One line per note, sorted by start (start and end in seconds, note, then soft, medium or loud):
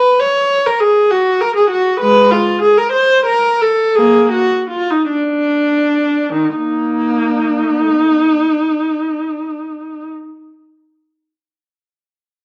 0.00 0.19 B4 medium
0.20 0.65 C#5 medium
0.67 0.81 A#4 medium
0.81 1.10 G#4 medium
1.11 1.40 F#4 medium
1.41 1.55 A#4 medium
1.56 1.70 G#4 medium
1.70 2.00 F#4 medium
2.00 2.29 G#3 medium
2.00 2.31 B4 loud
2.31 2.62 F4 medium
2.62 2.78 G#4 medium
2.78 2.94 A#4 medium
2.93 3.26 C5 medium
3.26 3.60 A#4 medium
3.62 3.96 A4 medium
3.96 4.29 A#3 medium
3.96 4.32 G#4 medium
4.32 4.69 F#4 medium
4.70 4.88 F4 medium
4.91 5.09 D#4 medium
5.09 6.31 D4 medium
6.34 6.55 D#3 medium
6.56 8.22 A#3 medium
6.56 10.05 D#4 medium